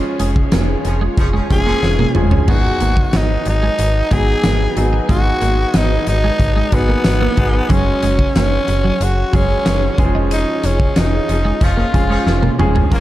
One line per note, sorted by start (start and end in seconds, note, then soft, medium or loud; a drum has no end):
0.00 0.59 F3 loud
0.00 0.59 G#3 medium
0.00 0.60 C#4 medium
0.00 2.46 F4 medium
0.00 0.60 G#4 loud
0.00 2.45 G#4 medium
0.00 2.44 C#5 medium
0.00 12.88 G#5 medium
0.00 muted clean electric guitar stroke soft
0.20 0.43 F1 medium
0.20 0.33 G#3 medium
0.20 closed hi-hat medium
0.36 kick medium
0.52 0.76 F1 loud
0.52 0.66 A#3 medium
0.52 snare loud
0.52 closed hi-hat medium
0.52 tambourine medium
0.85 1.09 F1 loud
0.85 0.99 F3 medium
0.85 0.99 C#4 medium
0.85 0.99 G#4 medium
0.85 muted clean electric guitar stroke soft
0.85 closed hi-hat medium
1.01 1.15 G#3 medium
1.18 1.41 F1 loud
1.18 1.28 F3 medium
1.18 1.28 C#4 medium
1.18 1.28 G#4 loud
1.18 kick loud
1.18 closed hi-hat medium
1.33 1.48 F3 medium
1.33 1.47 G#3 medium
1.33 1.48 C#4 medium
1.33 1.48 G#4 medium
1.50 1.74 F1 loud
1.50 1.94 F3 medium
1.50 1.94 G#3 medium
1.50 1.94 C#4 medium
1.50 1.95 G#4 medium
1.50 2.12 G#4 loud
1.50 muted clean electric guitar stroke soft
1.50 kick medium
1.50 closed hi-hat medium
1.66 1.87 F3 medium
1.66 1.80 A#3 medium
1.66 1.87 C#4 medium
1.66 1.87 G#4 loud
1.83 2.06 F1 loud
1.83 snare medium
1.99 2.12 A#3 medium
1.99 high tom medium
2.15 2.39 F1 medium
2.15 2.37 F3 medium
2.15 2.37 G#3 medium
2.15 2.38 C#4 medium
2.15 2.38 G#4 medium
2.15 muted clean electric guitar stroke soft
2.15 mid tom medium
2.31 2.45 C#4 medium
2.31 floor tom medium
2.48 2.72 G#1 loud
2.48 3.36 F#3 medium
2.48 2.62 G#3 medium
2.48 3.36 B3 medium
2.48 3.36 D#4 medium
2.48 9.94 F#4 medium
2.48 3.18 F#4 medium
2.48 3.36 G#4 medium
2.48 7.66 B4 medium
2.48 7.66 D#5 medium
2.48 kick loud
2.48 crash medium
2.65 muted clean electric guitar stroke soft
2.80 3.04 G#1 medium
2.80 2.94 A#3 medium
2.80 closed hi-hat medium
2.97 kick medium
3.13 3.37 G#1 loud
3.13 3.27 B3 medium
3.13 3.47 D#4 medium
3.13 snare loud
3.13 closed hi-hat medium
3.13 tambourine medium
3.45 3.70 G#1 loud
3.45 4.15 D#4 loud
3.45 muted clean electric guitar stroke soft
3.45 closed hi-hat medium
3.63 3.76 G#3 medium
3.79 4.02 G#1 loud
3.79 closed hi-hat medium
4.11 4.35 G#1 loud
4.11 4.55 F#3 medium
4.11 4.25 G#3 medium
4.11 4.55 B3 medium
4.11 4.55 D#4 medium
4.11 4.56 G#4 medium
4.11 4.78 G#4 loud
4.11 kick medium
4.11 closed hi-hat medium
4.44 4.68 G#1 loud
4.44 4.57 A#3 medium
4.44 snare loud
4.44 closed hi-hat medium
4.44 tambourine medium
4.76 5.00 G#1 loud
4.76 4.98 F#3 medium
4.76 4.99 B3 medium
4.76 4.99 D#4 medium
4.76 4.99 G#4 medium
4.76 muted clean electric guitar stroke soft
4.76 closed hi-hat medium
4.93 5.06 B3 medium
5.09 5.33 G#1 loud
5.09 5.97 F#3 medium
5.09 5.22 G#3 medium
5.09 5.97 B3 medium
5.09 5.97 D#4 medium
5.09 5.78 F#4 loud
5.09 5.97 G#4 medium
5.09 kick loud
5.09 closed hi-hat medium
5.25 muted clean electric guitar stroke soft
5.41 5.65 G#1 medium
5.41 5.55 A#3 medium
5.41 closed hi-hat medium
5.74 5.98 G#1 loud
5.74 5.88 B3 medium
5.74 6.08 D#4 loud
5.74 snare loud
5.74 closed hi-hat medium
5.74 tambourine medium
6.07 6.31 G#1 loud
6.07 6.76 D#4 loud
6.07 muted clean electric guitar stroke soft
6.07 closed hi-hat medium
6.24 6.37 G#3 medium
6.40 6.63 G#1 loud
6.40 kick loud
6.40 closed hi-hat medium
6.56 6.69 G#3 medium
6.72 6.96 G#1 loud
6.72 7.16 F#3 medium
6.72 7.16 B3 medium
6.72 7.73 B3 loud
6.72 7.17 D#4 medium
6.72 7.17 G#4 medium
6.72 muted clean electric guitar stroke soft
6.72 kick medium
6.72 closed hi-hat medium
6.89 7.02 A#3 medium
7.04 7.29 G#1 loud
7.04 snare loud
7.04 closed hi-hat loud
7.04 tambourine medium
7.21 7.34 A#3 medium
7.37 7.61 G#1 loud
7.37 7.59 F#3 medium
7.37 7.59 B3 medium
7.37 7.59 D#4 medium
7.37 7.60 G#4 medium
7.37 muted clean electric guitar stroke soft
7.37 kick loud
7.37 closed hi-hat medium
7.54 7.67 B3 medium
7.69 7.93 F#1 loud
7.69 8.57 F#3 medium
7.69 7.83 F#3 medium
7.69 8.57 G#3 medium
7.69 8.57 C#4 medium
7.69 8.36 C#4 loud
7.69 8.58 G#4 medium
7.69 12.88 G#4 medium
7.69 12.88 C#5 medium
7.69 kick loud
7.69 closed hi-hat medium
7.87 muted clean electric guitar stroke soft
8.02 8.26 F#1 medium
8.02 8.16 G#3 medium
8.02 closed hi-hat medium
8.19 kick medium
8.35 8.59 F#1 loud
8.35 8.49 A#3 medium
8.35 9.05 C#4 loud
8.35 snare loud
8.35 closed hi-hat medium
8.35 tambourine medium
8.68 8.92 F#1 loud
8.68 muted clean electric guitar stroke soft
8.68 closed hi-hat medium
8.84 8.97 F#3 medium
9.01 9.24 F#1 loud
9.01 9.37 F#4 medium
9.01 closed hi-hat medium
9.33 9.57 F#1 loud
9.33 9.77 F#3 medium
9.33 9.46 F#3 medium
9.33 9.77 G#3 medium
9.33 9.77 C#4 medium
9.33 10.05 C#4 loud
9.33 9.77 G#4 medium
9.33 kick medium
9.33 closed hi-hat medium
9.66 9.89 F#1 loud
9.66 9.79 G#3 medium
9.66 snare loud
9.66 closed hi-hat medium
9.66 tambourine medium
9.98 10.45 F1 loud
9.98 10.05 E3 medium
9.98 11.03 G#3 medium
9.98 11.03 C#4 medium
9.98 12.89 F4 medium
9.98 11.03 G#4 medium
9.98 muted clean electric guitar stroke soft
9.98 kick loud
9.98 closed hi-hat medium
10.05 11.06 F3 medium
10.15 10.28 D#4 medium
10.31 10.44 C#4 medium
10.31 10.67 D#4 medium
10.31 closed hi-hat medium
10.48 muted clean electric guitar stroke soft
10.63 10.87 F1 loud
10.63 11.00 C#4 medium
10.63 10.77 D#4 medium
10.63 closed hi-hat medium
10.80 kick medium
10.96 11.20 F1 loud
10.96 11.09 C#4 medium
10.96 11.65 D#4 loud
10.96 snare loud
10.96 closed hi-hat medium
10.96 tambourine medium
11.28 11.53 F1 loud
11.28 11.42 F3 medium
11.28 11.43 C#4 medium
11.28 11.42 G#4 medium
11.28 muted clean electric guitar stroke soft
11.28 closed hi-hat medium
11.45 11.58 G#3 medium
11.61 11.85 F1 loud
11.61 11.72 F3 medium
11.61 11.72 C#4 medium
11.61 12.60 F4 medium
11.61 11.72 G#4 loud
11.61 kick loud
11.61 closed hi-hat medium
11.77 11.91 F3 medium
11.77 11.91 A#3 medium
11.77 11.91 C#4 medium
11.77 11.91 G#4 medium
11.94 12.18 F1 loud
11.94 12.38 F3 medium
11.94 12.38 G#3 medium
11.94 12.38 C#4 medium
11.94 12.38 G#4 medium
11.94 muted clean electric guitar stroke soft
11.94 kick medium
11.94 closed hi-hat medium
12.10 12.31 F3 medium
12.10 12.23 G#3 medium
12.10 12.31 C#4 loud
12.10 12.31 G#4 loud
12.26 12.50 F1 loud
12.26 snare medium
12.43 12.56 A#3 medium
12.43 high tom medium
12.58 12.83 F1 loud
12.58 12.81 F3 medium
12.58 12.81 G#3 medium
12.58 12.81 C#4 medium
12.58 12.81 G#4 medium
12.58 muted clean electric guitar stroke soft
12.58 mid tom medium
12.75 12.89 G#3 medium
12.75 floor tom medium
12.91 13.00 F#1 loud
12.91 13.00 F#3 medium
12.91 13.00 A#3 medium
12.91 13.00 C#4 medium
12.91 13.00 F4 medium
12.91 13.00 A#4 medium
12.91 13.00 A#4 loud
12.91 13.00 A#4 medium
12.91 13.00 F5 medium
12.91 13.00 A#5 medium
12.91 13.00 C#6 medium
12.91 kick loud
12.91 closed hi-hat medium